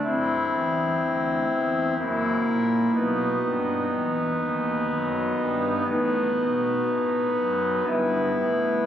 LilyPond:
<<
  \new Staff \with { instrumentName = "Pipe organ" } { \time 3/4 \key b \phrygian \tempo 4 = 61 <c' e'>2 <ais e'>4 | <b dis'>2. | <b dis'>2 <b e'>4 | }
  \new Staff \with { instrumentName = "Pipe organ" } { \clef bass \time 3/4 \key b \phrygian <c,, c,>8 e,8 d,8 e,8 <fis,, fis,>8 ais,8 | <b,, b,>8 g,8 e,8 dis,8 fis,8 g,8 | <a,, a,>8 b,8 a,8 fis,8 <g,, g,>8 a,8 | }
>>